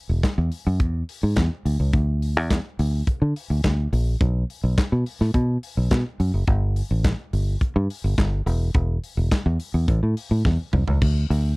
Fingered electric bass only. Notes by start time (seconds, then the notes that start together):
0.09 E1
0.38 E2
0.67 F#2
0.80 E2
1.23 G#2
1.37 E2
1.65 D2
1.80 C#2
1.94 D2
2.37 E2
2.79 D2
3.07 muted fingered electric bass stroke
3.22 D3
3.50 D2
3.64 D2
3.93 A#1
4.21 B1
4.64 B1
4.92 B2
5.21 A2
5.35 B2
5.77 B1
5.91 B2
6.20 F#2
6.34 F#1
6.48 G1
6.91 A1
7.33 G1
7.61 muted fingered electric bass stroke
7.76 G2
8.04 G1
8.18 G1
8.46 E1
8.75 E1
9.17 E1
9.32 muted fingered electric bass stroke
9.46 E2
9.74 E2
9.88 A1
10.03 A2
10.31 A2
10.45 E2
10.73 C2
10.88 C#2
11.02 D2
11.30 D2